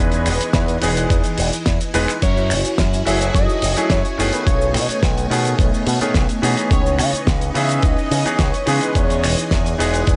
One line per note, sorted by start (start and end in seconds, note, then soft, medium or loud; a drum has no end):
0.00 0.28 E2 loud
0.00 0.78 E3 medium
0.00 2.20 E3 medium
0.00 0.79 G#3 medium
0.00 0.79 B3 medium
0.00 0.79 D#4 medium
0.00 0.79 G#4 loud
0.00 1.62 B4 loud
0.00 2.18 D#5 medium
0.00 6.67 G#5 medium
0.12 closed hi-hat soft
0.12 cabasa soft
0.26 0.37 E1 medium
0.26 finger snap medium
0.26 open hi-hat loud
0.26 cabasa medium
0.41 muted picked electric bass stroke soft
0.41 closed hi-hat medium
0.41 cabasa medium
0.53 0.77 E2 loud
0.53 kick loud
0.53 snare loud
0.53 closed hi-hat loud
0.53 cabasa medium
0.68 closed hi-hat medium
0.68 cabasa soft
0.81 1.05 E1 medium
0.81 1.49 E3 medium
0.81 1.49 G#3 medium
0.81 1.49 B3 medium
0.81 1.49 D#4 medium
0.81 1.50 G#4 medium
0.81 open hi-hat loud
0.81 cabasa medium
0.97 closed hi-hat medium
0.97 cabasa medium
1.10 1.22 E2 medium
1.10 kick loud
1.10 closed hi-hat medium
1.10 cabasa medium
1.24 closed hi-hat medium
1.24 cabasa soft
1.38 1.50 E1 loud
1.38 open hi-hat loud
1.38 cabasa medium
1.53 muted picked electric bass stroke soft
1.53 closed hi-hat medium
1.53 cabasa medium
1.66 1.78 E2 medium
1.66 kick loud
1.66 snare loud
1.66 closed hi-hat medium
1.66 cabasa medium
1.80 closed hi-hat medium
1.80 cabasa soft
1.94 2.06 E1 medium
1.94 2.08 E3 medium
1.94 2.08 G#3 medium
1.94 2.08 B3 medium
1.94 2.08 D#4 medium
1.94 2.08 B4 loud
1.94 open hi-hat loud
1.94 cabasa medium
2.08 finger snap medium
2.08 closed hi-hat medium
2.08 cabasa medium
2.22 2.52 F#2 loud
2.22 4.45 E4 medium
2.22 4.45 F#4 medium
2.22 2.75 C#5 loud
2.22 kick loud
2.22 closed hi-hat medium
2.22 crash medium
2.22 cabasa medium
2.37 cabasa soft
2.50 2.62 F#1 loud
2.50 finger snap medium
2.50 open hi-hat loud
2.50 cabasa medium
2.65 closed hi-hat medium
2.65 cabasa medium
2.78 3.01 F#2 loud
2.78 kick loud
2.78 snare loud
2.78 closed hi-hat loud
2.78 cabasa medium
2.93 closed hi-hat medium
2.93 cabasa soft
3.05 3.29 F#1 medium
3.05 3.73 F#3 medium
3.05 3.73 A3 medium
3.05 3.73 C#4 medium
3.05 3.74 E4 medium
3.05 3.74 G#4 medium
3.05 3.19 E5 loud
3.05 open hi-hat medium
3.05 cabasa medium
3.21 closed hi-hat medium
3.21 cabasa medium
3.35 3.46 F#2 medium
3.35 3.92 D#5 loud
3.35 kick loud
3.35 closed hi-hat medium
3.35 cabasa medium
3.49 cabasa soft
3.62 3.74 F#1 loud
3.62 open hi-hat loud
3.62 cabasa medium
3.76 3.98 F#3 medium
3.76 3.98 A3 medium
3.76 3.98 C#4 medium
3.76 3.99 E4 medium
3.76 3.99 G#4 medium
3.76 muted picked electric bass stroke soft
3.76 closed hi-hat medium
3.76 cabasa medium
3.90 4.02 F#2 loud
3.90 4.35 C#5 loud
3.90 kick loud
3.90 snare loud
3.90 closed hi-hat loud
3.90 cabasa medium
4.05 closed hi-hat medium
4.05 cabasa soft
4.18 4.30 F#1 medium
4.18 5.27 D#3 medium
4.18 5.27 A3 medium
4.18 5.28 B3 medium
4.18 5.28 C#4 medium
4.18 5.28 G#4 loud
4.18 open hi-hat loud
4.18 cabasa medium
4.33 4.46 B4 medium
4.33 closed hi-hat medium
4.33 cabasa soft
4.46 4.76 B1 loud
4.46 6.69 A3 medium
4.46 6.69 B3 medium
4.46 4.99 C#5 loud
4.46 6.69 C#5 medium
4.46 10.16 D#5 medium
4.46 kick loud
4.46 closed hi-hat medium
4.46 cabasa medium
4.61 cabasa soft
4.74 4.86 B2 medium
4.74 finger snap medium
4.74 open hi-hat loud
4.74 cabasa medium
4.89 muted picked electric bass stroke soft
4.89 closed hi-hat medium
4.89 cabasa medium
5.03 5.25 B1 loud
5.03 kick loud
5.03 snare loud
5.03 closed hi-hat medium
5.03 cabasa medium
5.18 closed hi-hat medium
5.18 cabasa soft
5.30 5.53 B2 medium
5.30 5.97 D#3 medium
5.30 5.98 A3 medium
5.30 5.98 B3 medium
5.30 5.98 C#4 medium
5.30 5.98 G#4 medium
5.30 open hi-hat loud
5.30 cabasa medium
5.45 closed hi-hat medium
5.45 cabasa soft
5.59 5.70 B1 medium
5.59 kick loud
5.59 closed hi-hat medium
5.59 cabasa medium
5.74 cabasa soft
5.87 5.98 B2 loud
5.87 open hi-hat loud
5.87 cabasa medium
6.01 6.22 D#3 medium
6.01 6.22 A3 medium
6.01 6.23 B3 medium
6.01 6.23 C#4 medium
6.01 6.23 G#4 medium
6.01 muted picked electric bass stroke soft
6.01 closed hi-hat medium
6.01 cabasa soft
6.14 6.26 B1 loud
6.14 kick loud
6.14 snare loud
6.14 closed hi-hat medium
6.14 cabasa medium
6.29 closed hi-hat medium
6.29 cabasa soft
6.42 6.54 B2 medium
6.42 7.51 E3 medium
6.42 7.52 B3 medium
6.42 7.52 C#4 medium
6.42 7.52 D#4 medium
6.42 7.52 G#4 medium
6.42 open hi-hat loud
6.42 cabasa medium
6.57 closed hi-hat medium
6.57 cabasa medium
6.71 7.00 C#2 loud
6.71 8.93 C#4 medium
6.71 8.93 B4 medium
6.71 7.23 C#5 loud
6.71 kick loud
6.71 closed hi-hat medium
6.71 cabasa medium
6.86 cabasa soft
6.99 7.10 C#3 medium
6.99 finger snap medium
6.99 open hi-hat loud
6.99 cabasa medium
7.13 muted picked electric bass stroke soft
7.13 closed hi-hat medium
7.13 cabasa medium
7.27 7.49 C#2 loud
7.27 kick loud
7.27 snare loud
7.27 closed hi-hat medium
7.27 cabasa medium
7.41 closed hi-hat medium
7.41 cabasa soft
7.54 7.78 C#3 medium
7.54 8.22 E3 medium
7.54 8.22 B3 medium
7.54 8.22 C#4 medium
7.54 8.22 D#4 medium
7.54 8.23 G#4 medium
7.54 7.85 E5 loud
7.54 open hi-hat loud
7.54 cabasa medium
7.69 closed hi-hat medium
7.69 cabasa soft
7.82 7.94 C#2 medium
7.82 8.41 D#5 loud
7.82 kick loud
7.82 closed hi-hat medium
7.82 cabasa medium
7.98 cabasa soft
8.11 8.23 C#3 loud
8.11 open hi-hat loud
8.11 cabasa medium
8.25 8.47 E3 medium
8.25 8.47 B3 medium
8.25 8.47 C#4 medium
8.25 8.47 D#4 medium
8.25 8.47 G#4 medium
8.25 muted picked electric bass stroke soft
8.25 closed hi-hat medium
8.25 cabasa soft
8.39 8.51 C#2 loud
8.39 8.83 C#5 loud
8.39 kick loud
8.39 snare loud
8.39 closed hi-hat loud
8.39 cabasa medium
8.54 closed hi-hat soft
8.54 cabasa soft
8.66 8.79 C#3 medium
8.66 9.76 E3 medium
8.66 9.76 G#3 medium
8.66 9.76 B3 medium
8.66 9.76 D#4 medium
8.66 9.77 G#4 loud
8.66 open hi-hat loud
8.66 cabasa medium
8.81 8.97 B4 medium
8.81 closed hi-hat medium
8.81 cabasa soft
8.95 9.25 E2 loud
8.95 10.16 E3 medium
8.95 9.51 C#5 loud
8.95 10.16 G#5 medium
8.95 kick loud
8.95 closed hi-hat medium
8.95 cabasa medium
9.10 closed hi-hat medium
9.10 cabasa soft
9.23 9.35 E1 medium
9.23 finger snap medium
9.23 open hi-hat loud
9.23 cabasa medium
9.38 closed hi-hat medium
9.38 cabasa soft
9.51 9.74 E2 loud
9.51 kick loud
9.51 snare loud
9.51 closed hi-hat medium
9.51 cabasa medium
9.66 closed hi-hat medium
9.66 cabasa soft
9.78 10.02 E1 medium
9.78 10.16 E3 medium
9.78 10.16 G#3 medium
9.78 10.16 B3 medium
9.78 10.16 D#4 medium
9.78 10.16 G#4 medium
9.78 open hi-hat loud
9.78 cabasa medium
9.94 closed hi-hat medium
9.94 cabasa soft
10.07 10.16 E2 medium
10.07 kick loud
10.07 closed hi-hat medium
10.07 cabasa medium